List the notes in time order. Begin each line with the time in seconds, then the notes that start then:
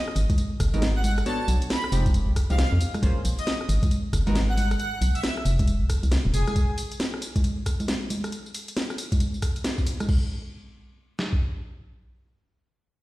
0.08 cross-stick
0.16 G#1, open hi-hat, tambourine
0.30 kick, closed hi-hat, tambourine, high conga
0.38 closed hi-hat, tambourine
0.60 F#1, kick, cross-stick, open hi-hat, tambourine
0.74 G#1 G#3 B3 D#4 F#4 A#4, closed hi-hat, tambourine, high conga
0.82 snare, closed hi-hat, tambourine
0.96 F#5
1.04 F#5, open hi-hat, tambourine, high conga
1.18 cross-stick, closed hi-hat, tambourine
1.26 B3 D4 F#4 A4 C#5 A5, closed hi-hat, tambourine
1.40 A5
1.48 B1, open hi-hat, tambourine
1.62 closed hi-hat, tambourine
1.70 B5, snare, closed hi-hat, tambourine
1.84 cross-stick
1.92 F1 F3 G#3 C4 D#4 G4, open hi-hat, tambourine
2.06 kick, closed hi-hat, tambourine, high conga
2.14 closed hi-hat, tambourine
2.28 C2
2.36 kick, cross-stick, open hi-hat, tambourine
2.50 C2 F3 G#3 C4 D#4 G4 F5, closed hi-hat, tambourine
2.58 F5, snare, closed hi-hat, tambourine
2.72 F2
2.81 open hi-hat, tambourine
2.94 cross-stick, closed hi-hat, tambourine, high conga
3.02 A#1 A#3 C#4 F4 G#4 C5, kick, closed hi-hat, tambourine
3.25 A#1, open hi-hat, tambourine
3.39 D#5, closed hi-hat, tambourine
3.47 snare, closed hi-hat, tambourine
3.61 cross-stick
3.69 G#1, open hi-hat, tambourine
3.83 kick, closed hi-hat, tambourine, high conga
3.91 closed hi-hat, tambourine
4.13 F#1, kick, cross-stick, open hi-hat, tambourine
4.27 G#1 G#3 B3 D#4 F#4 A#4, closed hi-hat, tambourine, high conga
4.35 snare, closed hi-hat, tambourine
4.49 F#5
4.57 F#5, open hi-hat, tambourine, high conga
4.71 cross-stick, closed hi-hat, tambourine
4.79 F#5, closed hi-hat, tambourine
4.93 F#5
5.01 B1, open hi-hat, tambourine
5.15 E5, closed hi-hat, tambourine
5.23 E5, snare, closed hi-hat, tambourine
5.37 cross-stick
5.45 F1, open hi-hat, tambourine
5.59 kick, closed hi-hat, tambourine, high conga
5.68 closed hi-hat, tambourine
5.81 C2
5.90 kick, cross-stick, open hi-hat, tambourine
6.03 C2, closed hi-hat, tambourine
6.12 snare, closed hi-hat, tambourine
6.25 D#1
6.34 F1 G#4, open hi-hat, tambourine
6.47 G#4, cross-stick, closed hi-hat, tambourine, high conga
6.56 kick, closed hi-hat, tambourine
6.78 open hi-hat, tambourine
6.92 closed hi-hat, tambourine
7.00 snare, closed hi-hat, tambourine
7.14 cross-stick
7.22 open hi-hat, tambourine
7.36 kick, closed hi-hat, tambourine, high conga
7.44 closed hi-hat, tambourine
7.66 kick, cross-stick, open hi-hat, tambourine
7.80 closed hi-hat, tambourine, high conga
7.88 snare, closed hi-hat, tambourine
8.10 open hi-hat, tambourine, high conga
8.24 cross-stick, closed hi-hat, tambourine
8.32 closed hi-hat, tambourine
8.46 tambourine
8.54 open hi-hat, tambourine
8.68 closed hi-hat, tambourine
8.77 snare, closed hi-hat, tambourine
8.90 cross-stick, tambourine
8.98 open hi-hat, tambourine
9.12 kick, closed hi-hat, tambourine, high conga
9.20 closed hi-hat, tambourine
9.34 tambourine
9.42 kick, cross-stick, open hi-hat, tambourine
9.56 closed hi-hat, tambourine
9.64 snare, closed hi-hat, tambourine
9.78 kick, tambourine
9.87 open hi-hat, tambourine
10.00 cross-stick, closed hi-hat, tambourine, high conga
10.09 kick, crash
11.19 snare
11.33 kick